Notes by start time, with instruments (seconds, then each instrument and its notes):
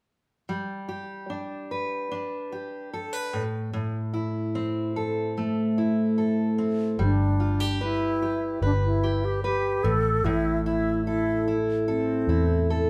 0.49 steel-string acoustic guitar G3
0.89 steel-string acoustic guitar G4
1.30 steel-string acoustic guitar D4
1.71 steel-string acoustic guitar B4
2.12 steel-string acoustic guitar D4
2.52 steel-string acoustic guitar G4
2.93 steel-string acoustic guitar A4
3.13 steel-string acoustic guitar B4
3.33 steel-string acoustic guitar A2
3.73 steel-string acoustic guitar A2
4.14 steel-string acoustic guitar E4
4.55 steel-string acoustic guitar C4
4.96 steel-string acoustic guitar A4
5.37 steel-string acoustic guitar A3
5.78 steel-string acoustic guitar E4
6.18 steel-string acoustic guitar A4
6.58 steel-string acoustic guitar C4
6.99 fingered electric bass G1, steel-string acoustic guitar G3
7.03 alto flute D4
7.40 steel-string acoustic guitar F4
7.60 steel-string acoustic guitar G4
7.81 alto flute E4, steel-string acoustic guitar B4
8.22 steel-string acoustic guitar G4
8.62 fingered electric bass G1, alto flute D4, steel-string acoustic guitar B4
8.85 alto flute E4
9.03 steel-string acoustic guitar G4
9.25 alto flute G4
9.44 alto flute G4, steel-string acoustic guitar B4
9.84 fingered electric bass A1, steel-string acoustic guitar A2, alto flute A4
10.24 fingered electric bass A1, steel-string acoustic guitar A2, alto flute E4
10.65 alto flute E4, steel-string acoustic guitar E4
11.06 alto flute E4, steel-string acoustic guitar A4
11.48 steel-string acoustic guitar E4
11.87 alto flute C4, steel-string acoustic guitar A4
12.27 fingered electric bass E2, steel-string acoustic guitar E4
12.70 steel-string acoustic guitar A4